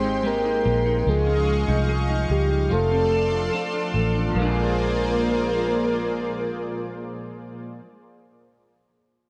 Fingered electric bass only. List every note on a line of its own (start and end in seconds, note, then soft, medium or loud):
0.00 0.61 G#1 loud
0.66 1.04 A#1 medium
1.07 1.65 C#2 loud
1.68 2.27 C2 medium
2.30 2.69 C#2 loud
2.71 3.49 F1 loud
3.94 4.33 A1 medium
4.35 7.63 A#1 loud